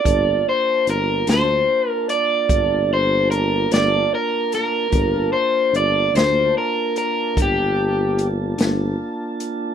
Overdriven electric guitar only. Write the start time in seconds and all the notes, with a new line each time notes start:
Already playing: D5
0.49 C5
0.90 A#4
1.30 C5
1.90 A#4
2.10 D5
2.93 C5
3.31 A#4
3.74 D5
4.15 A#4
4.55 A#4
5.33 C5
5.76 D5
6.17 C5
6.58 A#4
6.98 A#4
7.42 G4